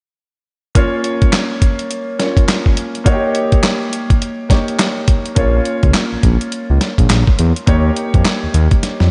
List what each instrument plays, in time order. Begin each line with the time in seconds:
0.75 grand piano A#3 C#4 F4 C#5, kick, closed hi-hat
1.04 closed hi-hat
1.22 kick, closed hi-hat
1.33 snare, clap, closed hi-hat
1.62 kick, closed hi-hat
1.79 closed hi-hat
1.91 closed hi-hat
2.19 grand piano A#3 C#4 F4 C#5, snare, closed hi-hat
2.37 kick, closed hi-hat
2.48 snare, clap, closed hi-hat
2.66 kick
2.77 closed hi-hat
2.95 closed hi-hat
3.04 grand piano A#3 D#4 F#4 C#5, kick, closed hi-hat
3.12 grand piano G4
3.35 closed hi-hat
3.52 kick, closed hi-hat
3.63 snare, clap, closed hi-hat
3.93 closed hi-hat
4.10 kick, closed hi-hat
4.22 closed hi-hat
4.49 grand piano A#3 D#4 G4 C#5, kick, snare, closed hi-hat
4.68 closed hi-hat
4.79 snare, clap, closed hi-hat
5.08 kick, closed hi-hat
5.26 closed hi-hat
5.35 analog synth bass A#1, grand piano A#3 C#4 F4 C#5, kick, closed hi-hat
5.65 closed hi-hat
5.83 analog synth bass C#2, kick, closed hi-hat
5.94 snare, clap, closed hi-hat
6.12 analog synth bass A#1
6.23 analog synth bass A#1, kick, closed hi-hat
6.41 closed hi-hat
6.52 closed hi-hat
6.70 analog synth bass C#2
6.81 snare, closed hi-hat
6.98 analog synth bass A#1, kick, closed hi-hat
7.10 analog synth bass A#1, snare, clap, closed hi-hat
7.27 kick
7.39 analog synth bass E2, closed hi-hat
7.56 closed hi-hat
7.66 analog synth bass D#2, grand piano A#3 D#4 G4 C#5, kick, closed hi-hat
7.96 closed hi-hat
8.14 analog synth bass F2, kick, closed hi-hat
8.25 snare, clap, closed hi-hat
8.43 analog synth bass D#2
8.54 analog synth bass D#2, closed hi-hat
8.71 kick, closed hi-hat
8.83 snare, closed hi-hat
9.00 analog synth bass F2, snare